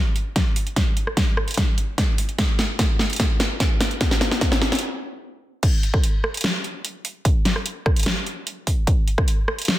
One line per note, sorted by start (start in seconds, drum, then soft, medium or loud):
0.16 closed hi-hat medium
0.36 kick loud
0.36 snare medium
0.36 closed hi-hat medium
0.56 open hi-hat medium
0.67 closed hi-hat soft
0.76 kick medium
0.76 snare medium
0.76 closed hi-hat medium
0.97 closed hi-hat soft
1.07 cross-stick medium
1.17 kick loud
1.17 snare medium
1.17 closed hi-hat medium
1.37 cross-stick medium
1.48 closed hi-hat soft
1.51 closed hi-hat medium
1.54 kick loud
1.54 snare medium
1.54 closed hi-hat medium
1.57 closed hi-hat medium
1.78 closed hi-hat medium
1.98 kick loud
1.98 snare medium
1.98 closed hi-hat medium
2.18 open hi-hat medium
2.29 closed hi-hat soft
2.38 kick loud
2.38 snare medium
2.38 closed hi-hat medium
2.59 snare medium
2.59 closed hi-hat soft
2.79 kick loud
2.79 snare medium
2.79 closed hi-hat medium
2.99 snare medium
3.10 closed hi-hat soft
3.13 closed hi-hat medium
3.16 kick loud
3.16 snare medium
3.16 closed hi-hat medium
3.20 closed hi-hat medium
3.40 snare medium
3.40 closed hi-hat medium
3.60 kick loud
3.60 snare medium
3.60 closed hi-hat medium
3.81 snare medium
3.81 open hi-hat medium
3.91 closed hi-hat soft
4.01 kick loud
4.01 snare medium
4.01 closed hi-hat medium
4.11 snare medium
4.21 snare loud
4.21 closed hi-hat soft
4.31 snare medium
4.41 kick loud
4.41 snare medium
4.41 closed hi-hat medium
4.52 snare medium
4.62 snare medium
4.72 snare medium
4.72 closed hi-hat soft
4.75 closed hi-hat medium
4.79 closed hi-hat medium
5.63 kick loud
5.63 closed hi-hat medium
5.63 crash loud
5.83 closed hi-hat medium
5.94 kick loud
5.94 cross-stick medium
6.04 closed hi-hat medium
6.24 cross-stick medium
6.34 closed hi-hat medium
6.37 closed hi-hat medium
6.41 snare loud
6.41 closed hi-hat medium
6.64 closed hi-hat medium
6.85 closed hi-hat medium
7.05 open hi-hat medium
7.25 kick loud
7.25 closed hi-hat medium
7.45 snare medium
7.45 closed hi-hat medium
7.56 cross-stick medium
7.66 closed hi-hat medium
7.86 kick loud
7.86 cross-stick medium
7.96 closed hi-hat medium
7.99 closed hi-hat medium
8.03 snare loud
8.03 closed hi-hat medium
8.26 closed hi-hat medium
8.47 closed hi-hat medium
8.67 kick medium
8.67 open hi-hat medium
8.87 kick loud
8.87 closed hi-hat medium
9.08 closed hi-hat soft
9.18 kick loud
9.18 cross-stick medium
9.28 closed hi-hat medium
9.48 cross-stick medium
9.59 closed hi-hat soft
9.62 closed hi-hat medium
9.65 snare loud
9.65 closed hi-hat medium
9.68 closed hi-hat medium